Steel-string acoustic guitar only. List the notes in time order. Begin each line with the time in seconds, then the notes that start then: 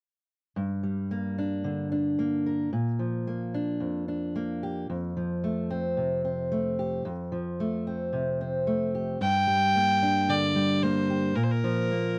0.56 G2
0.83 G3
1.11 A#3
1.38 D4
1.64 D3
1.92 D4
2.19 A#3
2.46 A#4
2.73 A#2
2.99 F3
3.27 A#3
3.54 D4
3.80 F2
4.08 D4
4.36 A#3
4.63 G4
4.90 F2
5.17 F3
5.44 A3
5.70 C4
5.97 C3
6.24 C4
6.52 A3
6.79 G4
7.05 F2
7.32 F3
7.60 A3
7.87 C4
8.13 C3
8.41 C4
8.67 A3
8.95 G4
9.21 G2
9.47 G3
9.76 A#3
10.03 D4
10.29 D3
10.55 G3
10.83 A#3
11.10 G4
11.36 A#2
11.64 F3
11.91 A#3